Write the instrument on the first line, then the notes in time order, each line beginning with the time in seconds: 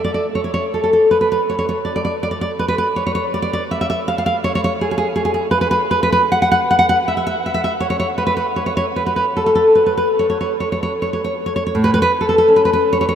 nylon-string guitar
0.04 D5
0.14 D5
0.35 C#5
0.44 C#5
0.54 C#5
0.74 A4
0.84 A4
0.93 A4
1.11 B4
1.21 B4
1.32 B4
1.50 C#5
1.59 C#5
1.69 C#5
1.85 D5
1.96 D5
2.05 D5
2.23 D5
2.31 D5
2.41 D5
2.59 B4
2.68 B4
2.78 B4
2.96 C#5
3.07 C#5
3.15 C#5
3.34 D5
3.42 D5
3.53 D5
3.71 E5
3.81 E5
3.90 E5
4.08 F5
4.18 F5
4.26 F5
4.44 C#5
4.55 C#5
4.64 C#5
4.81 G#4
4.91 G#4
4.98 G#4
5.16 G#4
5.25 G#4
5.34 G#4
5.51 B4
5.61 B4
5.71 B4
5.91 B4
6.03 B4
6.12 B4
6.32 F#5
6.42 F#5
6.52 F#5
6.71 F#5
6.79 F#5
6.89 F#5
7.08 E5
7.17 E5
7.27 E5
7.46 E5
7.54 E5
7.64 E5
7.80 C#5
7.90 C#5
8.00 C#5
8.18 B4
8.27 B4
8.37 B4
8.56 C#5
8.66 C#5
8.77 C#5
8.96 B4
9.06 B4
9.16 B4
9.37 A4
9.46 A4
9.55 A4
9.75 B4
9.86 B4
9.97 B4
10.19 C#5
10.30 C#5
10.41 C#5
10.60 C#5
10.72 C#5
10.83 C#5
11.02 C#5
11.13 C#5
11.24 C#5
11.46 C#5
11.56 C#5
11.67 C#5
11.75 A2
11.84 B4
11.94 B4
12.02 B4
12.21 A4
12.29 A4
12.38 A4
12.48 C#4
12.56 B4
12.65 B4
12.73 B4
12.93 C#5
13.01 C#5
13.09 C#5